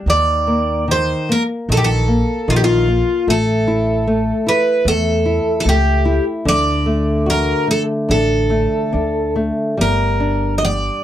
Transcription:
0, 0, Header, 1, 4, 480
1, 0, Start_track
1, 0, Tempo, 800000
1, 46, Time_signature, 4, 2, 24, 8
1, 4366, Tempo, 840336
1, 6514, End_track
2, 0, Start_track
2, 0, Title_t, "Twelve-string acoustic guitar"
2, 0, Program_c, 0, 25
2, 58, Note_on_c, 0, 74, 78
2, 518, Note_off_c, 0, 74, 0
2, 548, Note_on_c, 0, 72, 78
2, 788, Note_off_c, 0, 72, 0
2, 790, Note_on_c, 0, 70, 72
2, 854, Note_off_c, 0, 70, 0
2, 1031, Note_on_c, 0, 69, 73
2, 1063, Note_on_c, 0, 67, 69
2, 1067, Note_off_c, 0, 69, 0
2, 1102, Note_off_c, 0, 67, 0
2, 1106, Note_on_c, 0, 69, 79
2, 1500, Note_on_c, 0, 65, 73
2, 1511, Note_off_c, 0, 69, 0
2, 1535, Note_off_c, 0, 65, 0
2, 1538, Note_on_c, 0, 67, 61
2, 1578, Note_off_c, 0, 67, 0
2, 1583, Note_on_c, 0, 65, 73
2, 1952, Note_off_c, 0, 65, 0
2, 1981, Note_on_c, 0, 69, 82
2, 2689, Note_off_c, 0, 69, 0
2, 2691, Note_on_c, 0, 71, 75
2, 2925, Note_off_c, 0, 71, 0
2, 2927, Note_on_c, 0, 69, 79
2, 3355, Note_off_c, 0, 69, 0
2, 3362, Note_on_c, 0, 69, 60
2, 3401, Note_off_c, 0, 69, 0
2, 3412, Note_on_c, 0, 67, 72
2, 3743, Note_off_c, 0, 67, 0
2, 3891, Note_on_c, 0, 74, 84
2, 4376, Note_off_c, 0, 74, 0
2, 4379, Note_on_c, 0, 70, 74
2, 4591, Note_off_c, 0, 70, 0
2, 4612, Note_on_c, 0, 69, 66
2, 4675, Note_off_c, 0, 69, 0
2, 4841, Note_on_c, 0, 69, 64
2, 5542, Note_off_c, 0, 69, 0
2, 5814, Note_on_c, 0, 70, 69
2, 6229, Note_off_c, 0, 70, 0
2, 6253, Note_on_c, 0, 75, 54
2, 6288, Note_off_c, 0, 75, 0
2, 6291, Note_on_c, 0, 74, 75
2, 6514, Note_off_c, 0, 74, 0
2, 6514, End_track
3, 0, Start_track
3, 0, Title_t, "Nylon-string guitar"
3, 0, Program_c, 1, 24
3, 45, Note_on_c, 1, 51, 54
3, 283, Note_on_c, 1, 58, 43
3, 520, Note_off_c, 1, 51, 0
3, 525, Note_off_c, 1, 58, 0
3, 527, Note_on_c, 1, 51, 44
3, 768, Note_off_c, 1, 51, 0
3, 774, Note_on_c, 1, 58, 43
3, 1009, Note_off_c, 1, 58, 0
3, 1015, Note_on_c, 1, 51, 49
3, 1247, Note_on_c, 1, 58, 42
3, 1248, Note_off_c, 1, 51, 0
3, 1484, Note_off_c, 1, 58, 0
3, 1488, Note_on_c, 1, 51, 51
3, 1724, Note_off_c, 1, 51, 0
3, 1728, Note_on_c, 1, 58, 41
3, 1962, Note_off_c, 1, 58, 0
3, 1967, Note_on_c, 1, 57, 59
3, 2206, Note_on_c, 1, 64, 50
3, 2436, Note_off_c, 1, 64, 0
3, 2438, Note_off_c, 1, 57, 0
3, 2445, Note_on_c, 1, 57, 50
3, 2674, Note_off_c, 1, 57, 0
3, 2679, Note_on_c, 1, 64, 46
3, 2912, Note_off_c, 1, 64, 0
3, 2918, Note_on_c, 1, 57, 55
3, 3153, Note_off_c, 1, 57, 0
3, 3153, Note_on_c, 1, 64, 47
3, 3389, Note_off_c, 1, 64, 0
3, 3389, Note_on_c, 1, 57, 50
3, 3627, Note_off_c, 1, 57, 0
3, 3632, Note_on_c, 1, 64, 47
3, 3871, Note_off_c, 1, 64, 0
3, 3872, Note_on_c, 1, 50, 58
3, 4116, Note_on_c, 1, 57, 47
3, 4356, Note_off_c, 1, 57, 0
3, 4358, Note_on_c, 1, 66, 42
3, 4589, Note_off_c, 1, 66, 0
3, 4592, Note_on_c, 1, 57, 44
3, 4826, Note_off_c, 1, 57, 0
3, 4828, Note_on_c, 1, 62, 46
3, 5064, Note_on_c, 1, 57, 44
3, 5065, Note_off_c, 1, 62, 0
3, 5305, Note_off_c, 1, 57, 0
3, 5308, Note_on_c, 1, 62, 45
3, 5550, Note_off_c, 1, 62, 0
3, 5554, Note_on_c, 1, 57, 43
3, 5778, Note_off_c, 1, 50, 0
3, 5790, Note_off_c, 1, 57, 0
3, 5793, Note_on_c, 1, 55, 49
3, 6036, Note_on_c, 1, 62, 43
3, 6274, Note_off_c, 1, 55, 0
3, 6276, Note_off_c, 1, 62, 0
3, 6281, Note_on_c, 1, 55, 42
3, 6514, Note_off_c, 1, 55, 0
3, 6514, End_track
4, 0, Start_track
4, 0, Title_t, "Upright bass"
4, 0, Program_c, 2, 32
4, 37, Note_on_c, 2, 39, 70
4, 672, Note_off_c, 2, 39, 0
4, 1012, Note_on_c, 2, 34, 78
4, 1324, Note_off_c, 2, 34, 0
4, 1488, Note_on_c, 2, 34, 79
4, 1801, Note_off_c, 2, 34, 0
4, 1964, Note_on_c, 2, 33, 69
4, 2583, Note_off_c, 2, 33, 0
4, 2911, Note_on_c, 2, 40, 81
4, 3226, Note_off_c, 2, 40, 0
4, 3392, Note_on_c, 2, 37, 77
4, 3708, Note_off_c, 2, 37, 0
4, 3873, Note_on_c, 2, 38, 73
4, 4505, Note_off_c, 2, 38, 0
4, 4834, Note_on_c, 2, 33, 77
4, 5148, Note_off_c, 2, 33, 0
4, 5315, Note_on_c, 2, 38, 66
4, 5632, Note_off_c, 2, 38, 0
4, 5800, Note_on_c, 2, 31, 70
4, 6424, Note_off_c, 2, 31, 0
4, 6514, End_track
0, 0, End_of_file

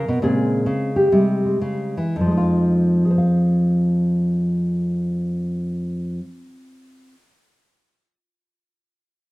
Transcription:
0, 0, Header, 1, 2, 480
1, 0, Start_track
1, 0, Key_signature, -4, "minor"
1, 0, Tempo, 424929
1, 272, Time_signature, 4, 2, 24, 8
1, 759, Tempo, 478851
1, 1719, Tempo, 533333
1, 5079, Tempo, 540541
1, 8589, End_track
2, 0, Start_track
2, 0, Title_t, "Nylon-string guitar"
2, 0, Program_c, 0, 24
2, 0, Note_on_c, 0, 70, 84
2, 95, Note_on_c, 0, 47, 56
2, 249, Note_on_c, 0, 46, 66
2, 252, Note_off_c, 0, 47, 0
2, 256, Note_on_c, 0, 49, 43
2, 261, Note_off_c, 0, 70, 0
2, 263, Note_on_c, 0, 56, 47
2, 266, Note_on_c, 0, 68, 96
2, 275, Note_on_c, 0, 60, 47
2, 734, Note_off_c, 0, 49, 0
2, 747, Note_on_c, 0, 49, 54
2, 748, Note_off_c, 0, 46, 0
2, 1045, Note_off_c, 0, 60, 0
2, 1049, Note_on_c, 0, 67, 68
2, 1193, Note_off_c, 0, 49, 0
2, 1210, Note_off_c, 0, 56, 0
2, 1210, Note_on_c, 0, 48, 62
2, 1214, Note_off_c, 0, 68, 0
2, 1215, Note_on_c, 0, 55, 46
2, 1222, Note_on_c, 0, 56, 43
2, 1530, Note_off_c, 0, 56, 0
2, 1542, Note_on_c, 0, 56, 38
2, 1700, Note_off_c, 0, 48, 0
2, 1704, Note_on_c, 0, 49, 53
2, 2023, Note_off_c, 0, 49, 0
2, 2025, Note_off_c, 0, 55, 0
2, 2029, Note_on_c, 0, 52, 50
2, 2195, Note_on_c, 0, 41, 58
2, 2197, Note_off_c, 0, 67, 0
2, 2198, Note_off_c, 0, 52, 0
2, 2239, Note_on_c, 0, 53, 56
2, 2278, Note_off_c, 0, 56, 0
2, 2289, Note_on_c, 0, 56, 47
2, 2332, Note_on_c, 0, 63, 50
2, 2389, Note_on_c, 0, 65, 72
2, 2994, Note_off_c, 0, 56, 0
2, 2995, Note_off_c, 0, 65, 0
2, 2998, Note_on_c, 0, 68, 59
2, 3045, Note_off_c, 0, 63, 0
2, 3049, Note_on_c, 0, 72, 60
2, 3114, Note_on_c, 0, 77, 54
2, 5814, Note_off_c, 0, 41, 0
2, 5858, Note_off_c, 0, 53, 0
2, 6606, Note_off_c, 0, 68, 0
2, 6656, Note_off_c, 0, 72, 0
2, 6721, Note_off_c, 0, 77, 0
2, 8589, End_track
0, 0, End_of_file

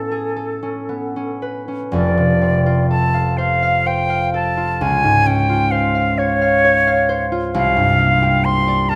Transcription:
0, 0, Header, 1, 3, 480
1, 0, Start_track
1, 0, Key_signature, -1, "major"
1, 0, Tempo, 1043478
1, 886, Time_signature, 6, 3, 24, 8
1, 886, Tempo, 969305
1, 1846, Tempo, 950872
1, 2326, Tempo, 907716
1, 4514, End_track
2, 0, Start_track
2, 0, Title_t, "Flute"
2, 0, Program_c, 0, 73
2, 0, Note_on_c, 0, 69, 59
2, 646, Note_off_c, 0, 69, 0
2, 882, Note_on_c, 0, 74, 72
2, 1348, Note_off_c, 0, 74, 0
2, 1368, Note_on_c, 0, 81, 72
2, 1602, Note_on_c, 0, 77, 72
2, 1609, Note_off_c, 0, 81, 0
2, 1848, Note_on_c, 0, 79, 68
2, 1856, Note_off_c, 0, 77, 0
2, 2084, Note_off_c, 0, 79, 0
2, 2087, Note_on_c, 0, 81, 74
2, 2328, Note_on_c, 0, 80, 72
2, 2336, Note_off_c, 0, 81, 0
2, 2564, Note_on_c, 0, 79, 76
2, 2571, Note_off_c, 0, 80, 0
2, 2800, Note_on_c, 0, 77, 74
2, 2807, Note_off_c, 0, 79, 0
2, 3048, Note_on_c, 0, 73, 84
2, 3056, Note_off_c, 0, 77, 0
2, 3624, Note_off_c, 0, 73, 0
2, 3770, Note_on_c, 0, 77, 84
2, 4246, Note_on_c, 0, 84, 88
2, 4254, Note_off_c, 0, 77, 0
2, 4481, Note_on_c, 0, 81, 96
2, 4489, Note_off_c, 0, 84, 0
2, 4514, Note_off_c, 0, 81, 0
2, 4514, End_track
3, 0, Start_track
3, 0, Title_t, "Harp"
3, 0, Program_c, 1, 46
3, 0, Note_on_c, 1, 45, 46
3, 0, Note_on_c, 1, 61, 35
3, 0, Note_on_c, 1, 69, 33
3, 0, Note_on_c, 1, 71, 39
3, 53, Note_on_c, 1, 68, 30
3, 162, Note_off_c, 1, 69, 0
3, 167, Note_on_c, 1, 69, 38
3, 253, Note_off_c, 1, 68, 0
3, 283, Note_off_c, 1, 61, 0
3, 288, Note_on_c, 1, 61, 33
3, 409, Note_on_c, 1, 59, 31
3, 529, Note_off_c, 1, 61, 0
3, 534, Note_on_c, 1, 61, 33
3, 614, Note_off_c, 1, 59, 0
3, 648, Note_off_c, 1, 71, 0
3, 654, Note_on_c, 1, 71, 35
3, 767, Note_off_c, 1, 61, 0
3, 773, Note_on_c, 1, 61, 32
3, 882, Note_on_c, 1, 29, 53
3, 888, Note_on_c, 1, 41, 53
3, 907, Note_off_c, 1, 45, 0
3, 907, Note_off_c, 1, 61, 0
3, 907, Note_off_c, 1, 71, 0
3, 1010, Note_on_c, 1, 48, 42
3, 1129, Note_on_c, 1, 60, 39
3, 1250, Note_on_c, 1, 65, 45
3, 1366, Note_off_c, 1, 69, 0
3, 1372, Note_on_c, 1, 69, 42
3, 1487, Note_on_c, 1, 77, 42
3, 1606, Note_on_c, 1, 72, 48
3, 1722, Note_off_c, 1, 77, 0
3, 1728, Note_on_c, 1, 77, 46
3, 1838, Note_off_c, 1, 72, 0
3, 1844, Note_on_c, 1, 72, 47
3, 1957, Note_off_c, 1, 77, 0
3, 1963, Note_on_c, 1, 77, 48
3, 2079, Note_off_c, 1, 69, 0
3, 2085, Note_on_c, 1, 69, 44
3, 2197, Note_off_c, 1, 65, 0
3, 2203, Note_on_c, 1, 65, 41
3, 2323, Note_on_c, 1, 37, 58
3, 2343, Note_off_c, 1, 29, 0
3, 2344, Note_off_c, 1, 69, 0
3, 2347, Note_off_c, 1, 41, 0
3, 2347, Note_off_c, 1, 48, 0
3, 2442, Note_on_c, 1, 44, 44
3, 2563, Note_on_c, 1, 61, 48
3, 2679, Note_off_c, 1, 65, 0
3, 2685, Note_on_c, 1, 65, 46
3, 2798, Note_off_c, 1, 72, 0
3, 2804, Note_on_c, 1, 72, 47
3, 2919, Note_off_c, 1, 77, 0
3, 2925, Note_on_c, 1, 77, 47
3, 3053, Note_on_c, 1, 73, 51
3, 3119, Note_off_c, 1, 60, 0
3, 3165, Note_off_c, 1, 77, 0
3, 3171, Note_on_c, 1, 77, 50
3, 3287, Note_off_c, 1, 73, 0
3, 3294, Note_on_c, 1, 73, 52
3, 3406, Note_off_c, 1, 77, 0
3, 3413, Note_on_c, 1, 77, 51
3, 3522, Note_off_c, 1, 72, 0
3, 3528, Note_on_c, 1, 72, 53
3, 3644, Note_off_c, 1, 65, 0
3, 3650, Note_on_c, 1, 65, 51
3, 3769, Note_on_c, 1, 36, 64
3, 3783, Note_off_c, 1, 44, 0
3, 3783, Note_off_c, 1, 61, 0
3, 3784, Note_off_c, 1, 37, 0
3, 3788, Note_off_c, 1, 73, 0
3, 3887, Note_on_c, 1, 43, 48
3, 4005, Note_on_c, 1, 58, 52
3, 4129, Note_on_c, 1, 67, 51
3, 4245, Note_off_c, 1, 72, 0
3, 4251, Note_on_c, 1, 72, 44
3, 4368, Note_on_c, 1, 74, 52
3, 4489, Note_on_c, 1, 70, 57
3, 4514, Note_off_c, 1, 36, 0
3, 4514, Note_off_c, 1, 43, 0
3, 4514, Note_off_c, 1, 58, 0
3, 4514, Note_off_c, 1, 65, 0
3, 4514, Note_off_c, 1, 67, 0
3, 4514, Note_off_c, 1, 70, 0
3, 4514, Note_off_c, 1, 72, 0
3, 4514, Note_off_c, 1, 74, 0
3, 4514, Note_off_c, 1, 77, 0
3, 4514, End_track
0, 0, End_of_file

